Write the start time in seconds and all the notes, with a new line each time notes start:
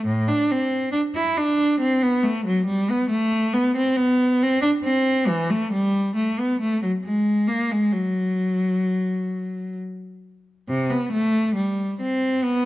0.07 A2
0.28 D4
0.52 C4
0.92 D4
1.15 E4
1.37 D4
1.80 C4
2.03 B3
2.23 A3
2.46 F#3
2.66 G3
2.90 B3
3.10 A3
3.54 B3
3.76 C4
3.96 B3
4.43 C4
4.62 D4
4.84 C4
5.28 E3
5.50 A3
5.72 G3
6.16 A3
6.39 B3
6.61 A3
6.83 F#3
7.05 G#3
7.48 A#3
7.72 G#3
7.92 F#3
10.68 C3
10.91 B3
11.12 A3
11.55 G3
12.01 C4
12.43 B3